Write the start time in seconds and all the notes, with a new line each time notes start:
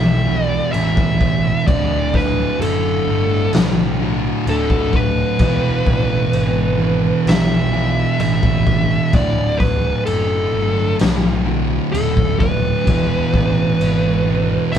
Already playing: B1 E2 B2 E3 E5
0.27 E2 B2 E3
0.44 D5
0.72 A1 E2 B2 E5, crash
0.79 E3
0.97 kick
1.21 kick
1.65 D1 D2 A2 D3 D5, kick, crash
1.71 D3
2.14 B4, kick, snare
2.59 F#1 A4, crash
3.06 G1 D2 A2 D3
3.53 B1, snare, crash
4.00 D2 A2 D3
4.46 D1 D2 A2 A4, crash
4.50 D3
4.70 kick
4.93 B4, kick
5.39 E1 E2 B2 E3, kick, crash
5.43 E3
5.87 A1, kick
6.33 G#1, crash
6.79 E2 B2 E3
7.26 B1 E5, snare, crash
7.72 B2 E3
7.76 E2
8.19 A1 E2 B2 E3 E5, crash
8.43 kick
8.67 kick
9.12 D1 D2 A2 D3 D5, kick, crash
9.17 D3
9.58 B4, kick
9.62 snare
10.06 F#1 A4, crash
10.53 G1 D2 A2 D3
10.99 B1, snare, crash
11.46 A2 D3
11.50 D2
11.92 D#1 D2 A2 A4, crash
11.97 D3
12.17 kick
12.40 B4, kick
12.85 E1 E2 B2 E3, kick, crash
12.90 E3
13.34 A1, kick
13.80 G#1, crash
14.26 E2 B2 E3
14.72 B1 E5, crash